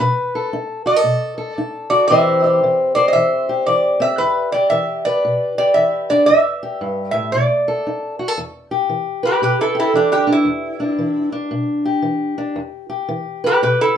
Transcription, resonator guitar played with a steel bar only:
0.00 B4
0.87 D#5
1.54 D5
1.90 D5
2.08 E5
2.95 D5
3.08 D#5
3.13 E5
3.66 D5
4.02 E5
4.18 B4
4.52 D5
4.70 E5
5.05 D5
5.58 D5
5.74 E5
6.10 D5
6.26 E5
7.11 E5
7.32 D5
9.25 G4 B4
9.43 G4 B4
9.61 E4 A4
9.80 E4 A4
9.95 D4 G4
10.12 D4 G4
10.32 E4
13.46 G4 B4
13.63 G4 B4
13.81 E4 A4

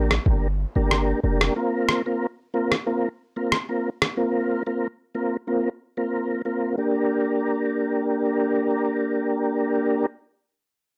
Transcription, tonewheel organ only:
Already playing: A#3 D4 G4 A#4
0.26 A#3 D4 G4 A#4
0.76 A#3 D4 G4 A#4
1.23 A#3 D4 G4 A#4
1.56 A#3 C4 F4 A#4
2.06 A#3 C4 F4 A#4
2.54 A#3 C4 F4 A#4
2.86 A#3 C4 F4 A#4
3.36 A#3 C4 F4 A#4
3.69 A#3 C4 F4 A#4
4.17 A#3 C4 F4 A#4
4.67 A#3 C4 F4 A#4
5.15 A#3 C4 F4 A#4
5.47 A#3 C4 F4 A#4
5.97 A#3 C4 F4 A#4
6.45 A#3 C4 F4 A#4
6.78 A#3 D4 G4 A#4

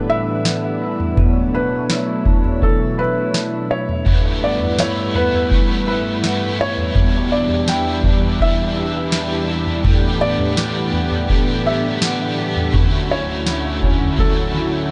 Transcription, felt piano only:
0.10 E5
1.55 B4
2.63 A4
2.99 B4
3.71 C#5
4.44 D5
4.80 C#5
5.16 B4
5.88 B4
6.61 C#5
7.32 D5
7.69 G5
8.42 E5
10.21 D5
11.66 E5
13.11 C#5
14.20 A4

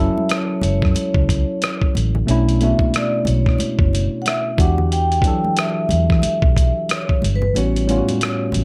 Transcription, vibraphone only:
Already playing: E5
0.32 C#5
0.64 C#5
2.62 E5
2.96 D5
3.28 C#5
4.22 F#5
4.27 E5
4.60 F#5
4.93 G5
5.59 E5
5.93 E5
6.91 C#5
7.36 B4
7.57 C#5

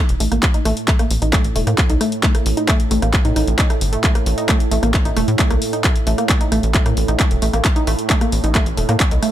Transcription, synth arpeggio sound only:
0.20 A3
0.32 A#3
0.54 D#4
0.65 A3
0.88 A3
0.99 A#3
1.22 D#4
1.33 A3
1.56 A3
1.67 A#3
1.90 D#4
2.01 A3
2.23 A3
2.35 A#3
2.57 D#4
2.68 A3
2.91 A3
3.02 A#3
3.25 D#4
3.36 D#4
3.59 D#4
3.70 A3
3.93 A3
4.04 A3
4.15 A#3
4.38 D#4
4.49 A3
4.71 A3
4.83 A#3
5.05 D#4
5.17 A3
5.39 A3
5.50 A#3
5.73 D#4
5.84 A3
6.07 A3
6.18 A#3
6.41 D#4
6.52 A3
6.74 A3
6.86 A#3
7.08 D#4
7.20 A3
7.42 A3
7.53 A#3
7.76 D#4
7.87 A3
8.10 A3
8.21 A#3
8.44 D#4
8.55 A3
8.78 A3
8.89 A#3
9.11 D#4
9.23 A3

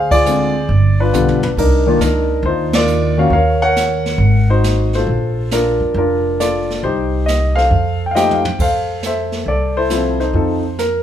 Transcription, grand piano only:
Already playing: G#4 C5 F5
0.11 F4 G#4 D5
0.25 D3 G#3 C4 F4
1.00 D4 F4 B4
1.13 D3 G3 B3 F4
1.43 B4
1.58 D4 D#4 A#4
1.87 D#3 A#3 D4 F4
2.01 D4 D#4 A#4
2.46 D#4 F4 C5
2.75 F4 A#4 D5
3.18 D#3 A#3 C#4 F#4 F5
3.33 A#4 C#5 F5
3.62 A#4 C#5 F#5
4.50 D#4 F#4 C5
4.95 F4 A4 C5
5.53 D4 F4 A#4
5.97 D4 F4 A#4
6.40 F4 A4 D5
6.84 D#4 G4 C5
7.26 D#5
7.56 A4 C5 F5
8.06 G5
8.11 D#5 F5
8.15 F3 A3 D#4 G4 C5 G5
8.21 D#5
8.32 F5
8.60 A4 C5 F5
9.05 A4 C5 E5
9.48 A4 D5
9.77 E4 A4 C5
9.91 F3 C4 E4 A4
10.20 D#4 A4 C5
10.35 F3 C4 D#4 A4
10.79 A#4

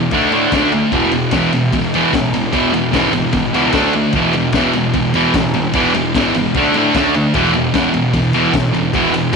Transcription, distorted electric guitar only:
0.12 D3 A3 D4
0.33 D3 A3 D4
0.53 D3 A3 D4
0.73 D3 A3
0.92 E2 B2 E3
1.12 E2 B2
1.32 E2 B2 E3
1.54 E2 B2
1.74 E2 B2
1.94 E2 B2 E3
2.14 E2 B2
2.33 E2 B2
2.53 E2 B2 E3
2.73 E2 B2
2.92 E2 B2 E3
3.13 E2 B2
3.33 E2 B2
3.53 E2 B2 E3
3.73 D3 A3 D4
3.95 D3 A3
4.15 E2 B2 E3
4.34 E2 B2
4.54 E2 B2 E3
4.75 E2 B2
4.94 E2 B2
5.14 E2 B2 E3
5.35 E2 B2
5.55 E2 B2
5.74 E2 B2 E3
5.95 E2 B2
6.15 E2 B2 E3
6.36 E2 B2
6.56 D3 A3 D4
6.76 D3 A3 D4
6.96 D3 A3 D4
7.16 D3 A3
7.34 E2 B2 E3
7.55 E2 B2
7.74 E2 B2 E3
7.94 E2 B2
8.14 E2 B2
8.33 E2 B2 E3
8.53 E2 B2
8.73 E2 B2
8.94 E2 B2 E3
9.13 E2 B2
9.33 E2

